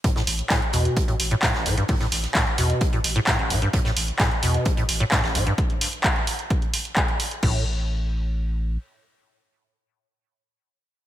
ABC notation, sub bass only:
X:1
M:4/4
L:1/8
Q:1/4=130
K:Am
V:1 name="Sub bass" clef=bass
z A,,, z E,, z A,,, z A,,, | z A,,, z E,, z A,,, z A,,, | z A,,, z E,, z A,,, z A,,, | z8 |
A,,,6 z2 | z8 |]